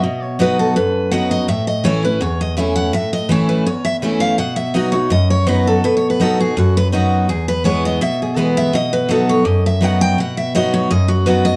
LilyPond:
<<
  \new Staff \with { instrumentName = "Steel-string acoustic guitar" } { \time 4/4 \key b \mixolydian \tempo 4 = 166 dis''8 cis''8 b'8 a'8 b'4 fis''8 dis''8 | e''8 dis''8 cis''8 b'8 cis''8 dis''8 e''8 fis''8 | e''8 dis''8 cis''8 b'8 cis''8 e''8 r8 eis''8 | fis''8 e''8 dis''8 cis''8 dis''8 cis''8 b'8 a'8 |
\tuplet 3/2 { b'8 cis''8 b'8 } a'8 gis'8 fis'8 b'8 r4 | gis'8 b'8 cis''8 dis''8 e''8 gis'8 b'8 e''8 | dis''8 b'8 a'8 cis''8 dis''8 e''8 fis''8 g''8 | fis''8 e''8 dis''8 cis''8 dis''8 fis'8 b'8 dis''8 | }
  \new Staff \with { instrumentName = "Steel-string acoustic guitar" } { \time 4/4 \key b \mixolydian << { r4 <fis b dis' fis'>4 r4 <fis b dis' fis'>4 | r4 <e a cis' e'>8 <cis' e'>8 r4 <e a cis' e'>4 | r4 <e a cis' e'>4 r4 <e a cis' e'>4 | r4 <fis b dis' fis'>8 <dis' fis'>8 r4 <fis b dis' fis'>4 |
r4 <fis b dis' fis'>8 <dis' fis'>8 r4 <fis b dis' fis'>4 | r4 <e gis b e'>4 r4 <e gis b e'>4 | r4 <fis b dis' fis'>4 r4 <fis b dis' fis'>4 | r4 <fis b dis' fis'>4 r4 <fis b dis' fis'>4 | } \\ { b,2 fis,2 | a,2 e,2 | a,2 e,2 | b,2 fis,2 |
b,2 fis,2 | e,2 b,2 | b,2 fis,2 | b,2 fis,2 | } >> }
>>